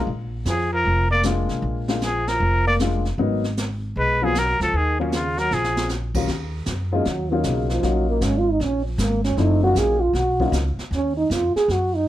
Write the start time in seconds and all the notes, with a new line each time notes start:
0.07 A#1, brush sweep
0.45 F2 F3 G#4, snare, hi-hat pedal
0.72 F3 A#4
0.85 F1, brush sweep
1.11 A#3 D5
1.23 G#3 A#3 D4 F4, snare, hi-hat pedal
1.49 B1, snare
1.62 A#1, brush sweep
1.88 G#3 A#3 D4 F4, snare
2.01 F3 G#4, snare, hi-hat pedal
2.27 F3 A#4, snare
2.40 F1, brush sweep
2.67 A#3 D5
2.79 G#3 A#3 D4 F4, snare, hi-hat pedal
3.05 snare
3.18 G#1 F#3 A#3 B3 D#4, brush sweep
3.44 snare
3.57 snare, hi-hat pedal
3.96 B1 G#3 B4, brush sweep
4.22 F3 F#3 A#3 B3 F4 G#4
4.35 F#3 A#4, snare, hi-hat pedal
4.60 C#2 F3 A4, snare
4.73 D#2 D#3 G#4, brush sweep
5.00 A#2 F#3 A#3 C#4 F4
5.12 C#3 F4, snare, hi-hat pedal
5.38 F#3 A#4, snare
5.51 A#1 F3 G#4, snare
5.64 snare
5.77 snare
5.89 snare, hi-hat pedal
6.14 D#2 F#3 A#3 C#4 F4, kick, crash
6.28 D#2, brush sweep, snare
6.66 F#2, snare, hi-hat pedal
6.92 F#3 G#3 A#3 C#4 D#4 F4
7.05 D#2 F#3, brush sweep, snare
7.32 D#3 F#3 A#3 C#4 D#4 F4
7.44 B1 C#3, snare, hi-hat pedal
7.69 F3, snare
7.83 A#1 F#3 A#3 C#4 D#4 F4, brush sweep, snare
8.10 A#3
8.21 G#1 C#4, snare, hi-hat pedal
8.38 F4
8.51 D#4
8.60 A#1 C#4, brush sweep, snare
8.86 F3
8.98 G#1 A#3, snare, hi-hat pedal
9.24 C#4, snare
9.37 F#1 F3 A3 C4 D4 D#4 E4, brush sweep, snare
9.63 F#3 A#3 C#4 D#4 F4 F#4
9.75 A#1 G#4, snare, hi-hat pedal
10.01 F4
10.13 B1 F#4, brush sweep, snare
10.40 F#3 A#3 C#4 D#4 F4, kick
10.52 C#2, snare, hi-hat pedal
10.78 muted upright bass stroke, snare
10.91 D#2, brush sweep, snare
10.95 C#4
11.17 D#4
11.30 F2 F4, snare, hi-hat pedal
11.55 G#4, muted upright bass stroke, snare
11.68 F#2 F#4, brush sweep, snare
11.96 D#4